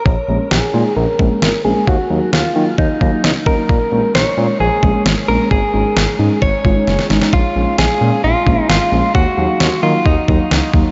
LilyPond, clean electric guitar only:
\new Staff \with { instrumentName = "Clean electric guitar" } { \time 4/4 \key bes \minor \tempo 4 = 132 des''4 aes'4 bes'4. aes'8 | ges'4 f'4 ees'4 ees'8 bes'8~ | bes'4 des''4 aes'4 r8 bes'8 | aes'2 des''4. r8 |
f'4 aes'4 f'4 f'4 | ges'4. f'8 ees'4. r8 | }